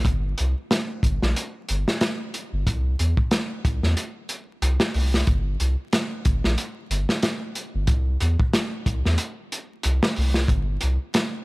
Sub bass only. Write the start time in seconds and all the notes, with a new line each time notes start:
0.05 G1
0.40 C2
1.03 G1
1.23 A#1
1.70 G1
2.53 G1
2.67 C2
3.00 E2
3.65 C2
3.83 E2
4.62 C2
4.95 C2
5.28 G1
5.60 C2
6.26 G1
6.45 A#1
6.90 G1
7.75 G1
7.88 C2
8.21 E2
8.86 C2
9.06 E2
9.85 C2
10.18 C2
10.49 G1
10.83 C2